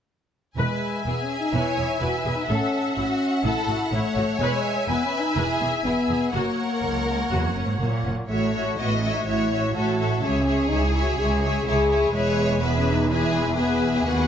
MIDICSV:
0, 0, Header, 1, 7, 480
1, 0, Start_track
1, 0, Key_signature, 4, "major"
1, 0, Tempo, 480000
1, 577, Time_signature, 4, 2, 24, 8
1, 5849, Tempo, 488998
1, 9209, Tempo, 478851
1, 14223, End_track
2, 0, Start_track
2, 0, Title_t, "Violin section"
2, 0, Program_c, 0, 48
2, 579, Note_on_c, 0, 80, 45
2, 2456, Note_off_c, 0, 80, 0
2, 2493, Note_on_c, 0, 78, 53
2, 4404, Note_off_c, 0, 78, 0
2, 4412, Note_on_c, 0, 80, 55
2, 6294, Note_off_c, 0, 80, 0
2, 6334, Note_on_c, 0, 78, 49
2, 8055, Note_off_c, 0, 78, 0
2, 8259, Note_on_c, 0, 76, 42
2, 8485, Note_off_c, 0, 76, 0
2, 8497, Note_on_c, 0, 76, 37
2, 8727, Note_off_c, 0, 76, 0
2, 8739, Note_on_c, 0, 76, 40
2, 8959, Note_off_c, 0, 76, 0
2, 8971, Note_on_c, 0, 76, 43
2, 9191, Note_off_c, 0, 76, 0
2, 9203, Note_on_c, 0, 76, 39
2, 9443, Note_off_c, 0, 76, 0
2, 9462, Note_on_c, 0, 76, 43
2, 9685, Note_off_c, 0, 76, 0
2, 9697, Note_on_c, 0, 76, 39
2, 9922, Note_off_c, 0, 76, 0
2, 9934, Note_on_c, 0, 76, 38
2, 10155, Note_off_c, 0, 76, 0
2, 10167, Note_on_c, 0, 76, 48
2, 10395, Note_off_c, 0, 76, 0
2, 10407, Note_on_c, 0, 76, 39
2, 10643, Note_off_c, 0, 76, 0
2, 10653, Note_on_c, 0, 76, 42
2, 10880, Note_off_c, 0, 76, 0
2, 10892, Note_on_c, 0, 76, 49
2, 11119, Note_off_c, 0, 76, 0
2, 11131, Note_on_c, 0, 76, 45
2, 11359, Note_off_c, 0, 76, 0
2, 11371, Note_on_c, 0, 76, 54
2, 11602, Note_off_c, 0, 76, 0
2, 11614, Note_on_c, 0, 76, 53
2, 11831, Note_off_c, 0, 76, 0
2, 11843, Note_on_c, 0, 76, 44
2, 12078, Note_off_c, 0, 76, 0
2, 12089, Note_on_c, 0, 76, 58
2, 12530, Note_off_c, 0, 76, 0
2, 12560, Note_on_c, 0, 76, 53
2, 13030, Note_off_c, 0, 76, 0
2, 13042, Note_on_c, 0, 76, 50
2, 13508, Note_off_c, 0, 76, 0
2, 13520, Note_on_c, 0, 76, 52
2, 13994, Note_off_c, 0, 76, 0
2, 14010, Note_on_c, 0, 78, 57
2, 14223, Note_off_c, 0, 78, 0
2, 14223, End_track
3, 0, Start_track
3, 0, Title_t, "Violin section"
3, 0, Program_c, 1, 48
3, 582, Note_on_c, 1, 71, 49
3, 1028, Note_off_c, 1, 71, 0
3, 1072, Note_on_c, 1, 68, 47
3, 1537, Note_off_c, 1, 68, 0
3, 1554, Note_on_c, 1, 73, 60
3, 2025, Note_off_c, 1, 73, 0
3, 2030, Note_on_c, 1, 71, 44
3, 2501, Note_off_c, 1, 71, 0
3, 2503, Note_on_c, 1, 69, 46
3, 2966, Note_off_c, 1, 69, 0
3, 2978, Note_on_c, 1, 66, 50
3, 3441, Note_off_c, 1, 66, 0
3, 3464, Note_on_c, 1, 69, 60
3, 3925, Note_off_c, 1, 69, 0
3, 3940, Note_on_c, 1, 73, 68
3, 4873, Note_off_c, 1, 73, 0
3, 4896, Note_on_c, 1, 71, 62
3, 5362, Note_off_c, 1, 71, 0
3, 5387, Note_on_c, 1, 68, 64
3, 5850, Note_off_c, 1, 68, 0
3, 5861, Note_on_c, 1, 68, 52
3, 6325, Note_off_c, 1, 68, 0
3, 6329, Note_on_c, 1, 70, 54
3, 8010, Note_off_c, 1, 70, 0
3, 8258, Note_on_c, 1, 73, 50
3, 8703, Note_off_c, 1, 73, 0
3, 8728, Note_on_c, 1, 75, 48
3, 9197, Note_off_c, 1, 75, 0
3, 9210, Note_on_c, 1, 73, 55
3, 9682, Note_off_c, 1, 73, 0
3, 9697, Note_on_c, 1, 69, 51
3, 10162, Note_off_c, 1, 69, 0
3, 10180, Note_on_c, 1, 68, 60
3, 11613, Note_off_c, 1, 68, 0
3, 11616, Note_on_c, 1, 64, 49
3, 12089, Note_off_c, 1, 64, 0
3, 12089, Note_on_c, 1, 73, 71
3, 12553, Note_off_c, 1, 73, 0
3, 12572, Note_on_c, 1, 71, 56
3, 13045, Note_off_c, 1, 71, 0
3, 13050, Note_on_c, 1, 68, 69
3, 13508, Note_off_c, 1, 68, 0
3, 13520, Note_on_c, 1, 68, 64
3, 14223, Note_off_c, 1, 68, 0
3, 14223, End_track
4, 0, Start_track
4, 0, Title_t, "Viola section"
4, 0, Program_c, 2, 48
4, 573, Note_on_c, 2, 76, 43
4, 579, Note_on_c, 2, 71, 48
4, 803, Note_off_c, 2, 71, 0
4, 1067, Note_on_c, 2, 64, 31
4, 1147, Note_off_c, 2, 64, 0
4, 1542, Note_on_c, 2, 71, 42
4, 1764, Note_off_c, 2, 71, 0
4, 1775, Note_on_c, 2, 68, 38
4, 1855, Note_off_c, 2, 68, 0
4, 2015, Note_on_c, 2, 64, 44
4, 2095, Note_off_c, 2, 64, 0
4, 2246, Note_on_c, 2, 68, 42
4, 2326, Note_off_c, 2, 68, 0
4, 2492, Note_on_c, 2, 69, 55
4, 2715, Note_off_c, 2, 69, 0
4, 2979, Note_on_c, 2, 64, 38
4, 3059, Note_off_c, 2, 64, 0
4, 3448, Note_on_c, 2, 69, 57
4, 3670, Note_off_c, 2, 69, 0
4, 3692, Note_on_c, 2, 66, 42
4, 3772, Note_off_c, 2, 66, 0
4, 3934, Note_on_c, 2, 64, 55
4, 4014, Note_off_c, 2, 64, 0
4, 4173, Note_on_c, 2, 66, 51
4, 4253, Note_off_c, 2, 66, 0
4, 4364, Note_off_c, 2, 76, 0
4, 4413, Note_on_c, 2, 71, 64
4, 4414, Note_on_c, 2, 76, 61
4, 4633, Note_off_c, 2, 71, 0
4, 4889, Note_on_c, 2, 64, 42
4, 4969, Note_off_c, 2, 64, 0
4, 5368, Note_on_c, 2, 71, 53
4, 5592, Note_off_c, 2, 71, 0
4, 5608, Note_on_c, 2, 68, 39
4, 5688, Note_off_c, 2, 68, 0
4, 5854, Note_on_c, 2, 64, 44
4, 5933, Note_off_c, 2, 64, 0
4, 6093, Note_on_c, 2, 68, 40
4, 6172, Note_off_c, 2, 68, 0
4, 6295, Note_off_c, 2, 76, 0
4, 6333, Note_on_c, 2, 66, 48
4, 6335, Note_on_c, 2, 73, 45
4, 6553, Note_off_c, 2, 66, 0
4, 6811, Note_on_c, 2, 58, 34
4, 6889, Note_off_c, 2, 58, 0
4, 7284, Note_on_c, 2, 66, 41
4, 7509, Note_off_c, 2, 66, 0
4, 7533, Note_on_c, 2, 61, 32
4, 7612, Note_off_c, 2, 61, 0
4, 7769, Note_on_c, 2, 58, 42
4, 7847, Note_off_c, 2, 58, 0
4, 8014, Note_on_c, 2, 61, 36
4, 8021, Note_off_c, 2, 73, 0
4, 8093, Note_off_c, 2, 61, 0
4, 8250, Note_on_c, 2, 66, 42
4, 8251, Note_on_c, 2, 73, 41
4, 8477, Note_off_c, 2, 66, 0
4, 8477, Note_off_c, 2, 73, 0
4, 8489, Note_on_c, 2, 66, 42
4, 8489, Note_on_c, 2, 73, 36
4, 8718, Note_off_c, 2, 73, 0
4, 8721, Note_off_c, 2, 66, 0
4, 8730, Note_on_c, 2, 73, 36
4, 8732, Note_on_c, 2, 66, 37
4, 8957, Note_off_c, 2, 73, 0
4, 8959, Note_off_c, 2, 66, 0
4, 8969, Note_on_c, 2, 73, 35
4, 8971, Note_on_c, 2, 66, 36
4, 9198, Note_off_c, 2, 66, 0
4, 9198, Note_off_c, 2, 73, 0
4, 9210, Note_on_c, 2, 66, 38
4, 9210, Note_on_c, 2, 73, 41
4, 9433, Note_off_c, 2, 73, 0
4, 9435, Note_off_c, 2, 66, 0
4, 9445, Note_on_c, 2, 73, 34
4, 9447, Note_on_c, 2, 66, 38
4, 9672, Note_off_c, 2, 66, 0
4, 9672, Note_off_c, 2, 73, 0
4, 9684, Note_on_c, 2, 66, 42
4, 9684, Note_on_c, 2, 73, 44
4, 9915, Note_off_c, 2, 66, 0
4, 9918, Note_off_c, 2, 73, 0
4, 9927, Note_on_c, 2, 66, 36
4, 9930, Note_on_c, 2, 73, 37
4, 10151, Note_off_c, 2, 73, 0
4, 10162, Note_off_c, 2, 66, 0
4, 10163, Note_on_c, 2, 68, 44
4, 10163, Note_on_c, 2, 73, 47
4, 10392, Note_off_c, 2, 68, 0
4, 10392, Note_off_c, 2, 73, 0
4, 10404, Note_on_c, 2, 68, 46
4, 10404, Note_on_c, 2, 73, 43
4, 10636, Note_off_c, 2, 68, 0
4, 10636, Note_off_c, 2, 73, 0
4, 10648, Note_on_c, 2, 68, 44
4, 10648, Note_on_c, 2, 73, 43
4, 10873, Note_off_c, 2, 73, 0
4, 10876, Note_off_c, 2, 68, 0
4, 10886, Note_on_c, 2, 73, 42
4, 10888, Note_on_c, 2, 68, 43
4, 11117, Note_off_c, 2, 73, 0
4, 11120, Note_off_c, 2, 68, 0
4, 11129, Note_on_c, 2, 73, 49
4, 11132, Note_on_c, 2, 68, 46
4, 11363, Note_off_c, 2, 68, 0
4, 11364, Note_off_c, 2, 73, 0
4, 11374, Note_on_c, 2, 73, 47
4, 11375, Note_on_c, 2, 68, 43
4, 11598, Note_off_c, 2, 68, 0
4, 11602, Note_off_c, 2, 73, 0
4, 11610, Note_on_c, 2, 68, 54
4, 11614, Note_on_c, 2, 73, 58
4, 11843, Note_off_c, 2, 68, 0
4, 11845, Note_off_c, 2, 73, 0
4, 11856, Note_on_c, 2, 68, 46
4, 11857, Note_on_c, 2, 73, 51
4, 12084, Note_off_c, 2, 68, 0
4, 12085, Note_off_c, 2, 73, 0
4, 12094, Note_on_c, 2, 71, 52
4, 12096, Note_on_c, 2, 68, 54
4, 12533, Note_off_c, 2, 68, 0
4, 12533, Note_off_c, 2, 71, 0
4, 12570, Note_on_c, 2, 68, 53
4, 12573, Note_on_c, 2, 71, 54
4, 13031, Note_off_c, 2, 68, 0
4, 13036, Note_off_c, 2, 71, 0
4, 13043, Note_on_c, 2, 68, 55
4, 13047, Note_on_c, 2, 71, 57
4, 13513, Note_off_c, 2, 68, 0
4, 13515, Note_off_c, 2, 71, 0
4, 13525, Note_on_c, 2, 68, 53
4, 13527, Note_on_c, 2, 71, 59
4, 13996, Note_off_c, 2, 68, 0
4, 13997, Note_off_c, 2, 71, 0
4, 14009, Note_on_c, 2, 66, 53
4, 14009, Note_on_c, 2, 71, 51
4, 14223, Note_off_c, 2, 66, 0
4, 14223, Note_off_c, 2, 71, 0
4, 14223, End_track
5, 0, Start_track
5, 0, Title_t, "French horn section"
5, 0, Program_c, 3, 60
5, 570, Note_on_c, 3, 56, 61
5, 1022, Note_off_c, 3, 56, 0
5, 1062, Note_on_c, 3, 59, 62
5, 1218, Note_off_c, 3, 59, 0
5, 1228, Note_on_c, 3, 61, 56
5, 1384, Note_off_c, 3, 61, 0
5, 1398, Note_on_c, 3, 63, 58
5, 1541, Note_on_c, 3, 64, 62
5, 1547, Note_off_c, 3, 63, 0
5, 2019, Note_off_c, 3, 64, 0
5, 2019, Note_on_c, 3, 66, 67
5, 2175, Note_off_c, 3, 66, 0
5, 2181, Note_on_c, 3, 64, 58
5, 2252, Note_off_c, 3, 64, 0
5, 2350, Note_on_c, 3, 63, 53
5, 2418, Note_off_c, 3, 63, 0
5, 2506, Note_on_c, 3, 61, 61
5, 2951, Note_off_c, 3, 61, 0
5, 2963, Note_on_c, 3, 61, 70
5, 3434, Note_off_c, 3, 61, 0
5, 3442, Note_on_c, 3, 64, 70
5, 3923, Note_off_c, 3, 64, 0
5, 3934, Note_on_c, 3, 57, 74
5, 4406, Note_on_c, 3, 56, 69
5, 4409, Note_off_c, 3, 57, 0
5, 4876, Note_off_c, 3, 56, 0
5, 4876, Note_on_c, 3, 59, 77
5, 5040, Note_off_c, 3, 59, 0
5, 5040, Note_on_c, 3, 61, 71
5, 5196, Note_on_c, 3, 63, 63
5, 5203, Note_off_c, 3, 61, 0
5, 5362, Note_off_c, 3, 63, 0
5, 5368, Note_on_c, 3, 64, 67
5, 5846, Note_on_c, 3, 59, 72
5, 5850, Note_off_c, 3, 64, 0
5, 6313, Note_on_c, 3, 58, 61
5, 6327, Note_off_c, 3, 59, 0
5, 7731, Note_off_c, 3, 58, 0
5, 8258, Note_on_c, 3, 57, 59
5, 8703, Note_off_c, 3, 57, 0
5, 8744, Note_on_c, 3, 59, 66
5, 8895, Note_off_c, 3, 59, 0
5, 8904, Note_on_c, 3, 61, 51
5, 9054, Note_off_c, 3, 61, 0
5, 9057, Note_on_c, 3, 63, 53
5, 9127, Note_off_c, 3, 63, 0
5, 9210, Note_on_c, 3, 64, 57
5, 9680, Note_on_c, 3, 66, 61
5, 9682, Note_off_c, 3, 64, 0
5, 10155, Note_on_c, 3, 61, 70
5, 10163, Note_off_c, 3, 66, 0
5, 10626, Note_on_c, 3, 63, 79
5, 10641, Note_off_c, 3, 61, 0
5, 10797, Note_off_c, 3, 63, 0
5, 10801, Note_on_c, 3, 64, 59
5, 10961, Note_off_c, 3, 64, 0
5, 10967, Note_on_c, 3, 66, 67
5, 11121, Note_on_c, 3, 68, 80
5, 11127, Note_off_c, 3, 66, 0
5, 11584, Note_off_c, 3, 68, 0
5, 11596, Note_on_c, 3, 68, 86
5, 12069, Note_off_c, 3, 68, 0
5, 12073, Note_on_c, 3, 56, 73
5, 12545, Note_off_c, 3, 56, 0
5, 12549, Note_on_c, 3, 59, 84
5, 12713, Note_on_c, 3, 61, 70
5, 12714, Note_off_c, 3, 59, 0
5, 12873, Note_off_c, 3, 61, 0
5, 12877, Note_on_c, 3, 63, 72
5, 13038, Note_off_c, 3, 63, 0
5, 13041, Note_on_c, 3, 64, 77
5, 13518, Note_on_c, 3, 59, 76
5, 13521, Note_off_c, 3, 64, 0
5, 13993, Note_off_c, 3, 59, 0
5, 14009, Note_on_c, 3, 59, 78
5, 14223, Note_off_c, 3, 59, 0
5, 14223, End_track
6, 0, Start_track
6, 0, Title_t, "Cello section"
6, 0, Program_c, 4, 48
6, 582, Note_on_c, 4, 40, 50
6, 662, Note_off_c, 4, 40, 0
6, 1064, Note_on_c, 4, 40, 35
6, 1144, Note_off_c, 4, 40, 0
6, 1545, Note_on_c, 4, 40, 51
6, 1625, Note_off_c, 4, 40, 0
6, 1783, Note_on_c, 4, 40, 34
6, 1863, Note_off_c, 4, 40, 0
6, 2024, Note_on_c, 4, 40, 39
6, 2104, Note_off_c, 4, 40, 0
6, 2260, Note_on_c, 4, 40, 40
6, 2340, Note_off_c, 4, 40, 0
6, 2499, Note_on_c, 4, 45, 51
6, 2579, Note_off_c, 4, 45, 0
6, 2969, Note_on_c, 4, 45, 42
6, 3049, Note_off_c, 4, 45, 0
6, 3444, Note_on_c, 4, 45, 62
6, 3524, Note_off_c, 4, 45, 0
6, 3679, Note_on_c, 4, 45, 42
6, 3759, Note_off_c, 4, 45, 0
6, 3918, Note_on_c, 4, 45, 44
6, 3998, Note_off_c, 4, 45, 0
6, 4157, Note_on_c, 4, 45, 44
6, 4237, Note_off_c, 4, 45, 0
6, 4404, Note_on_c, 4, 40, 56
6, 4484, Note_off_c, 4, 40, 0
6, 4881, Note_on_c, 4, 40, 47
6, 4961, Note_off_c, 4, 40, 0
6, 5364, Note_on_c, 4, 40, 55
6, 5444, Note_off_c, 4, 40, 0
6, 5609, Note_on_c, 4, 40, 39
6, 5689, Note_off_c, 4, 40, 0
6, 5849, Note_on_c, 4, 40, 38
6, 5928, Note_off_c, 4, 40, 0
6, 6085, Note_on_c, 4, 40, 40
6, 6163, Note_off_c, 4, 40, 0
6, 6324, Note_on_c, 4, 42, 52
6, 6402, Note_off_c, 4, 42, 0
6, 6809, Note_on_c, 4, 37, 49
6, 7254, Note_off_c, 4, 37, 0
6, 7282, Note_on_c, 4, 40, 53
6, 7441, Note_off_c, 4, 40, 0
6, 7448, Note_on_c, 4, 42, 46
6, 7608, Note_off_c, 4, 42, 0
6, 7619, Note_on_c, 4, 44, 46
6, 7681, Note_off_c, 4, 44, 0
6, 7769, Note_on_c, 4, 46, 47
6, 8242, Note_off_c, 4, 46, 0
6, 8252, Note_on_c, 4, 45, 49
6, 8677, Note_off_c, 4, 45, 0
6, 8733, Note_on_c, 4, 45, 51
6, 9153, Note_off_c, 4, 45, 0
6, 9205, Note_on_c, 4, 45, 47
6, 9632, Note_off_c, 4, 45, 0
6, 9687, Note_on_c, 4, 45, 50
6, 10110, Note_off_c, 4, 45, 0
6, 10163, Note_on_c, 4, 37, 48
6, 10589, Note_off_c, 4, 37, 0
6, 10646, Note_on_c, 4, 37, 53
6, 11070, Note_off_c, 4, 37, 0
6, 11125, Note_on_c, 4, 37, 59
6, 11550, Note_off_c, 4, 37, 0
6, 11605, Note_on_c, 4, 37, 58
6, 12027, Note_off_c, 4, 37, 0
6, 12085, Note_on_c, 4, 40, 60
6, 13964, Note_off_c, 4, 40, 0
6, 13998, Note_on_c, 4, 39, 56
6, 14223, Note_off_c, 4, 39, 0
6, 14223, End_track
7, 0, Start_track
7, 0, Title_t, "Double bass section"
7, 0, Program_c, 5, 48
7, 575, Note_on_c, 5, 28, 53
7, 655, Note_off_c, 5, 28, 0
7, 1058, Note_on_c, 5, 28, 36
7, 1138, Note_off_c, 5, 28, 0
7, 1539, Note_on_c, 5, 28, 54
7, 1619, Note_off_c, 5, 28, 0
7, 1776, Note_on_c, 5, 28, 36
7, 1856, Note_off_c, 5, 28, 0
7, 2017, Note_on_c, 5, 28, 38
7, 2097, Note_off_c, 5, 28, 0
7, 2255, Note_on_c, 5, 28, 33
7, 2335, Note_off_c, 5, 28, 0
7, 2493, Note_on_c, 5, 33, 57
7, 2573, Note_off_c, 5, 33, 0
7, 2977, Note_on_c, 5, 33, 39
7, 3057, Note_off_c, 5, 33, 0
7, 3447, Note_on_c, 5, 33, 60
7, 3527, Note_off_c, 5, 33, 0
7, 3680, Note_on_c, 5, 33, 41
7, 3760, Note_off_c, 5, 33, 0
7, 3924, Note_on_c, 5, 33, 44
7, 4004, Note_off_c, 5, 33, 0
7, 4160, Note_on_c, 5, 33, 43
7, 4240, Note_off_c, 5, 33, 0
7, 4394, Note_on_c, 5, 28, 64
7, 4474, Note_off_c, 5, 28, 0
7, 4880, Note_on_c, 5, 28, 45
7, 4960, Note_off_c, 5, 28, 0
7, 5361, Note_on_c, 5, 28, 62
7, 5441, Note_off_c, 5, 28, 0
7, 5606, Note_on_c, 5, 28, 41
7, 5686, Note_off_c, 5, 28, 0
7, 5845, Note_on_c, 5, 28, 43
7, 5923, Note_off_c, 5, 28, 0
7, 6088, Note_on_c, 5, 28, 39
7, 6167, Note_off_c, 5, 28, 0
7, 6328, Note_on_c, 5, 30, 54
7, 6406, Note_off_c, 5, 30, 0
7, 6809, Note_on_c, 5, 30, 34
7, 6888, Note_off_c, 5, 30, 0
7, 7288, Note_on_c, 5, 30, 51
7, 7366, Note_off_c, 5, 30, 0
7, 7529, Note_on_c, 5, 30, 34
7, 7607, Note_off_c, 5, 30, 0
7, 7761, Note_on_c, 5, 30, 37
7, 7840, Note_off_c, 5, 30, 0
7, 8006, Note_on_c, 5, 30, 30
7, 8085, Note_off_c, 5, 30, 0
7, 8241, Note_on_c, 5, 33, 48
7, 8671, Note_off_c, 5, 33, 0
7, 8726, Note_on_c, 5, 33, 51
7, 9149, Note_off_c, 5, 33, 0
7, 9200, Note_on_c, 5, 33, 43
7, 9630, Note_off_c, 5, 33, 0
7, 9689, Note_on_c, 5, 33, 50
7, 10111, Note_off_c, 5, 33, 0
7, 10169, Note_on_c, 5, 37, 55
7, 10592, Note_off_c, 5, 37, 0
7, 10643, Note_on_c, 5, 37, 54
7, 11068, Note_off_c, 5, 37, 0
7, 11127, Note_on_c, 5, 37, 60
7, 11551, Note_off_c, 5, 37, 0
7, 11604, Note_on_c, 5, 37, 66
7, 12026, Note_off_c, 5, 37, 0
7, 12082, Note_on_c, 5, 28, 62
7, 13962, Note_off_c, 5, 28, 0
7, 14000, Note_on_c, 5, 39, 58
7, 14223, Note_off_c, 5, 39, 0
7, 14223, End_track
0, 0, End_of_file